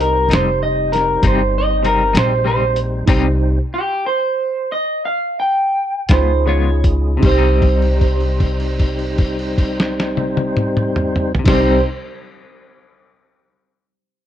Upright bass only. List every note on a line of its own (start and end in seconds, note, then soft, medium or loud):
0.00 0.28 C2 medium
0.29 1.19 F1 medium
1.22 2.12 G1 medium
2.15 3.05 A#1 loud
3.08 3.57 C2 medium
6.09 7.20 C#2 medium
7.23 11.33 C2 medium
11.46 11.79 C2 medium